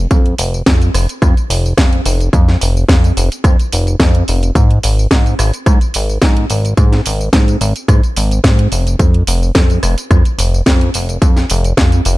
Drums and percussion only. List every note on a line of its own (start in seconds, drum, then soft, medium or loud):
0.11 kick loud
0.11 closed hi-hat medium
0.11 tambourine soft
0.26 closed hi-hat soft
0.38 open hi-hat loud
0.38 tambourine medium
0.54 tambourine soft
0.66 kick loud
0.66 snare loud
0.66 closed hi-hat medium
0.66 tambourine soft
0.82 closed hi-hat soft
0.82 tambourine soft
0.94 cross-stick medium
0.94 open hi-hat loud
0.94 tambourine medium
1.09 closed hi-hat medium
1.09 tambourine soft
1.22 kick loud
1.22 cross-stick medium
1.22 closed hi-hat medium
1.22 tambourine soft
1.37 closed hi-hat soft
1.37 tambourine soft
1.50 open hi-hat loud
1.50 tambourine medium
1.66 tambourine soft
1.78 kick loud
1.78 snare loud
1.78 closed hi-hat medium
1.78 tambourine soft
1.93 closed hi-hat medium
2.06 open hi-hat loud
2.06 tambourine medium
2.20 closed hi-hat soft
2.20 tambourine soft
2.33 kick loud
2.33 closed hi-hat medium
2.33 tambourine soft
2.48 snare soft
2.48 closed hi-hat soft
2.61 open hi-hat loud
2.61 tambourine medium
2.77 tambourine soft
2.89 kick loud
2.89 snare loud
2.89 closed hi-hat medium
2.89 tambourine soft
3.04 closed hi-hat soft
3.04 tambourine soft
3.17 open hi-hat loud
3.17 tambourine medium
3.32 closed hi-hat medium
3.32 tambourine soft
3.44 kick loud
3.44 cross-stick medium
3.44 closed hi-hat medium
3.44 tambourine soft
3.60 closed hi-hat soft
3.60 tambourine soft
3.73 open hi-hat loud
3.73 tambourine medium
3.87 closed hi-hat soft
3.87 tambourine soft
4.00 kick loud
4.00 snare loud
4.00 closed hi-hat medium
4.00 tambourine soft
4.15 closed hi-hat medium
4.28 open hi-hat loud
4.28 tambourine medium
4.43 closed hi-hat soft
4.43 tambourine soft
4.55 kick loud
4.55 closed hi-hat medium
4.55 tambourine soft
4.71 closed hi-hat soft
4.83 open hi-hat loud
4.83 tambourine medium
4.99 tambourine soft
5.11 kick loud
5.11 snare loud
5.11 closed hi-hat medium
5.11 tambourine soft
5.26 closed hi-hat soft
5.26 tambourine soft
5.39 cross-stick medium
5.39 open hi-hat loud
5.39 tambourine medium
5.54 closed hi-hat medium
5.54 tambourine soft
5.66 kick loud
5.66 cross-stick medium
5.66 closed hi-hat medium
5.66 tambourine soft
5.81 closed hi-hat soft
5.81 tambourine soft
5.94 open hi-hat loud
5.94 tambourine medium
6.09 tambourine soft
6.22 kick loud
6.22 snare loud
6.22 closed hi-hat medium
6.22 tambourine soft
6.37 closed hi-hat soft
6.50 open hi-hat loud
6.50 tambourine medium
6.65 closed hi-hat soft
6.65 tambourine soft
6.77 kick loud
6.77 closed hi-hat medium
6.77 tambourine soft
6.92 snare soft
6.92 closed hi-hat soft
7.06 open hi-hat loud
7.06 tambourine medium
7.21 tambourine soft
7.33 kick loud
7.33 snare loud
7.33 closed hi-hat medium
7.33 tambourine soft
7.48 closed hi-hat soft
7.48 tambourine soft
7.61 open hi-hat loud
7.61 tambourine medium
7.76 closed hi-hat medium
7.76 tambourine soft
7.88 kick loud
7.88 cross-stick medium
7.88 closed hi-hat medium
7.88 tambourine soft
8.03 closed hi-hat soft
8.03 tambourine soft
8.17 open hi-hat loud
8.17 tambourine medium
8.31 closed hi-hat soft
8.31 tambourine soft
8.44 kick loud
8.44 snare loud
8.44 closed hi-hat medium
8.44 tambourine soft
8.59 closed hi-hat medium
8.72 open hi-hat loud
8.72 tambourine medium
8.87 closed hi-hat soft
8.87 tambourine soft
8.99 kick loud
8.99 closed hi-hat medium
8.99 tambourine soft
9.14 closed hi-hat soft
9.27 open hi-hat loud
9.27 tambourine medium
9.43 tambourine soft
9.55 kick loud
9.55 snare loud
9.55 closed hi-hat medium
9.55 tambourine soft
9.70 closed hi-hat soft
9.70 tambourine soft
9.83 cross-stick medium
9.83 open hi-hat loud
9.83 tambourine medium
9.98 closed hi-hat medium
9.98 tambourine soft
10.11 kick loud
10.11 cross-stick medium
10.11 closed hi-hat medium
10.11 tambourine soft
10.25 closed hi-hat soft
10.25 tambourine soft
10.39 open hi-hat loud
10.39 tambourine medium
10.54 tambourine soft
10.66 kick loud
10.66 snare loud
10.66 closed hi-hat medium
10.66 tambourine soft
10.81 closed hi-hat medium
10.94 open hi-hat loud
10.94 tambourine medium
11.09 closed hi-hat soft
11.09 tambourine soft
11.22 kick loud
11.22 closed hi-hat medium
11.22 tambourine soft
11.37 snare soft
11.37 closed hi-hat soft
11.37 tambourine soft
11.50 open hi-hat loud
11.50 tambourine medium
11.64 closed hi-hat soft
11.64 tambourine soft
11.77 kick loud
11.77 snare loud
11.77 closed hi-hat medium
11.77 tambourine soft
11.92 closed hi-hat soft
11.92 tambourine soft
12.05 open hi-hat loud
12.05 tambourine medium